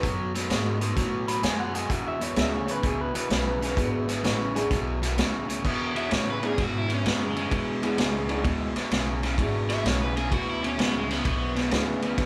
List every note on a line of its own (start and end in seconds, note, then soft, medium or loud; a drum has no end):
0.03 0.49 F#2 medium
0.03 0.31 B2 medium
0.03 0.31 F#3 medium
0.03 kick loud
0.03 closed hi-hat medium
0.35 0.48 B2 medium
0.35 0.49 F#3 medium
0.35 snare soft
0.35 closed hi-hat medium
0.50 0.95 G#2 medium
0.50 0.78 B2 medium
0.50 0.78 G#3 medium
0.50 0.78 A#3 medium
0.50 0.78 D4 medium
0.50 0.78 F4 medium
0.50 0.78 G#4 medium
0.50 snare loud
0.50 closed hi-hat medium
0.81 0.95 B2 medium
0.81 0.95 G#3 medium
0.81 1.22 A3 medium
0.81 1.22 B3 medium
0.81 1.22 D#4 medium
0.81 1.22 F#4 medium
0.81 1.22 A4 medium
0.81 closed hi-hat medium
0.97 1.42 A2 medium
0.97 1.25 B2 medium
0.97 1.25 F#3 medium
0.97 kick loud
0.97 snare soft
0.97 closed hi-hat medium
1.28 1.42 B2 medium
1.28 1.42 F#3 medium
1.28 1.43 B5 loud
1.28 closed hi-hat medium
1.43 1.89 F#2 medium
1.43 1.71 B2 medium
1.43 1.72 G#3 loud
1.43 1.58 G#5 loud
1.43 snare loud
1.43 closed hi-hat medium
1.60 1.75 F#5 medium
1.74 1.88 B2 medium
1.74 1.88 G#3 medium
1.74 1.91 G#5 medium
1.74 closed hi-hat medium
1.89 2.18 E2 medium
1.89 2.36 E2 medium
1.89 2.18 B2 medium
1.89 2.06 F#5 medium
1.89 kick loud
1.89 closed hi-hat medium
2.08 2.23 E5 loud
2.20 2.34 E2 medium
2.20 2.35 B2 medium
2.20 2.37 C#5 medium
2.20 closed hi-hat medium
2.36 2.82 D2 medium
2.36 2.64 E2 medium
2.36 2.65 C#3 medium
2.36 3.08 G#3 medium
2.36 3.09 B3 medium
2.36 3.09 D4 medium
2.36 3.09 E4 medium
2.36 3.09 G#4 medium
2.36 snare loud
2.36 closed hi-hat medium
2.41 2.54 E5 medium
2.54 2.69 C#5 medium
2.67 2.81 E2 medium
2.67 2.82 C#3 medium
2.67 closed hi-hat medium
2.71 2.85 B4 medium
2.83 3.13 C#2 medium
2.83 3.11 E2 medium
2.83 3.11 B2 medium
2.83 3.00 G#4 loud
2.83 kick loud
2.83 closed hi-hat medium
3.01 3.14 B4 medium
3.14 3.28 E2 medium
3.14 3.29 B2 medium
3.14 4.52 B4 medium
3.14 muted upright bass stroke soft
3.14 closed hi-hat medium
3.29 3.76 B1 medium
3.29 3.58 E2 medium
3.29 3.58 C#3 medium
3.29 snare loud
3.29 closed hi-hat medium
3.61 3.75 E2 medium
3.61 3.76 C#3 medium
3.61 snare soft
3.61 closed hi-hat medium
3.76 4.23 G#1 medium
3.76 4.05 E2 medium
3.76 4.05 B2 medium
3.76 4.06 G#3 medium
3.76 4.05 B3 medium
3.76 4.06 D4 medium
3.76 4.06 E4 medium
3.76 4.06 G#4 medium
3.76 kick loud
3.76 closed hi-hat medium
4.08 4.22 E2 medium
4.08 4.22 B2 medium
4.08 snare soft
4.08 closed hi-hat medium
4.23 4.69 A1 loud
4.23 4.52 E2 medium
4.23 4.52 C#3 medium
4.23 snare loud
4.23 closed hi-hat medium
4.54 4.69 E2 medium
4.54 4.69 C#3 medium
4.54 4.69 G#3 medium
4.54 4.69 B3 medium
4.54 4.69 D4 medium
4.54 4.69 E4 medium
4.54 4.70 G#4 loud
4.54 closed hi-hat medium
4.70 5.16 B1 medium
4.70 4.99 E2 medium
4.70 4.99 B2 medium
4.70 kick loud
4.70 snare soft
4.70 closed hi-hat medium
5.02 5.16 E2 medium
5.02 5.16 B2 medium
5.02 snare soft
5.02 closed hi-hat medium
5.17 5.63 D2 medium
5.17 5.46 E2 medium
5.17 5.46 C#3 medium
5.17 snare loud
5.17 closed hi-hat medium
5.48 5.63 E2 medium
5.48 5.63 C#3 medium
5.48 closed hi-hat medium
5.64 5.92 E2 medium
5.64 6.10 E2 medium
5.64 5.92 B2 medium
5.64 kick loud
5.64 crash loud
5.95 6.09 E2 medium
5.95 6.10 B2 medium
5.95 6.12 E5 loud
5.95 ride medium
6.10 6.39 E2 medium
6.10 6.57 A2 medium
6.10 6.39 C#3 medium
6.10 6.28 C#5 medium
6.10 snare loud
6.10 ride medium
6.31 6.46 B4 medium
6.42 6.55 E2 medium
6.42 6.56 C#3 medium
6.42 6.56 G#3 medium
6.42 6.56 B3 medium
6.42 6.56 D4 medium
6.42 6.56 E4 medium
6.42 6.57 G#4 medium
6.42 ride soft
6.46 6.62 G#4 medium
6.57 6.85 E2 medium
6.57 7.03 G#2 medium
6.57 6.85 B2 loud
6.57 kick loud
6.57 snare soft
6.57 ride medium
6.62 6.78 F#4 medium
6.78 6.91 E4 medium
6.88 7.02 E2 medium
6.88 7.03 B2 medium
6.88 ride medium
6.94 7.07 C#4 medium
7.03 7.32 E2 medium
7.03 7.50 F#2 medium
7.03 7.32 C#3 medium
7.03 snare loud
7.03 ride medium
7.09 7.24 B3 medium
7.24 7.36 G#3 medium
7.35 7.49 E2 medium
7.35 7.49 C#3 medium
7.35 8.73 G#3 medium
7.35 ride medium
7.50 7.79 E2 medium
7.50 7.97 E2 medium
7.50 7.79 B2 medium
7.50 kick loud
7.50 ride medium
7.82 7.96 E2 medium
7.82 7.96 B2 medium
7.82 8.26 G#3 medium
7.82 8.26 B3 medium
7.82 8.26 D4 medium
7.82 8.26 E4 medium
7.82 8.27 G#4 medium
7.82 ride medium
7.97 8.43 C#2 medium
7.97 8.26 E2 medium
7.97 8.26 C#3 medium
7.97 snare loud
7.97 ride medium
8.28 8.43 E2 medium
8.28 8.43 C#3 medium
8.28 8.43 G#3 medium
8.28 8.43 B3 medium
8.28 8.44 D4 medium
8.28 8.44 E4 medium
8.28 8.44 G#4 medium
8.28 ride medium
8.44 8.74 D2 medium
8.44 8.72 E2 medium
8.44 8.73 B2 medium
8.44 kick loud
8.44 ride medium
8.76 8.90 E2 medium
8.76 8.90 B2 medium
8.76 muted upright bass stroke soft
8.76 snare soft
8.76 ride medium
8.91 9.37 B1 medium
8.91 9.20 E2 medium
8.91 9.20 C#3 loud
8.91 snare medium
8.91 ride medium
9.23 9.37 E2 medium
9.23 9.37 C#3 medium
9.23 snare soft
9.23 ride medium
9.38 9.83 G#1 medium
9.38 9.66 E2 medium
9.38 9.66 B2 medium
9.38 10.10 G#3 medium
9.38 10.10 B3 medium
9.38 10.10 D4 medium
9.38 10.10 E4 medium
9.38 10.10 G#4 medium
9.38 kick loud
9.38 ride medium
9.70 9.83 E2 medium
9.70 9.83 B2 medium
9.70 9.85 E5 loud
9.70 snare soft
9.70 ride medium
9.85 10.30 B1 loud
9.85 10.13 E2 medium
9.85 10.13 C#3 medium
9.85 10.01 C#5 medium
9.85 snare loud
9.85 ride medium
10.01 10.16 B4 medium
10.16 10.30 E2 medium
10.16 10.30 C#3 medium
10.16 10.33 G#4 medium
10.16 ride medium
10.31 10.77 D2 medium
10.31 10.59 E2 medium
10.31 10.60 B2 medium
10.31 10.47 F#4 medium
10.31 kick loud
10.31 ride medium
10.50 10.63 E4 medium
10.62 10.76 E2 medium
10.62 10.77 B2 medium
10.62 10.81 C#4 medium
10.62 ride medium
10.77 11.23 C#2 medium
10.77 11.06 E2 medium
10.77 11.06 C#3 medium
10.77 10.94 B3 medium
10.77 snare loud
10.77 ride medium
10.97 11.11 G#3 medium
11.08 11.22 E2 medium
11.08 11.23 C#3 medium
11.08 12.26 B3 medium
11.08 snare soft
11.08 ride medium
11.24 11.70 B1 medium
11.24 11.52 E2 medium
11.24 11.53 B2 medium
11.24 kick loud
11.24 ride medium
11.55 11.70 E2 medium
11.55 11.70 B2 medium
11.55 snare soft
11.55 ride medium
11.71 12.17 D2 medium
11.71 12.00 E2 medium
11.71 12.00 C#3 medium
11.71 12.26 G#3 medium
11.71 12.26 B3 medium
11.71 12.26 D4 medium
11.71 12.26 E4 medium
11.71 12.26 G#4 medium
11.71 snare loud
11.71 ride medium
12.02 12.17 E2 medium
12.02 12.17 C#3 medium
12.02 ride medium
12.18 12.26 E2 medium
12.18 12.26 F#2 medium
12.18 12.26 B2 loud
12.18 kick loud
12.18 snare soft
12.18 ride medium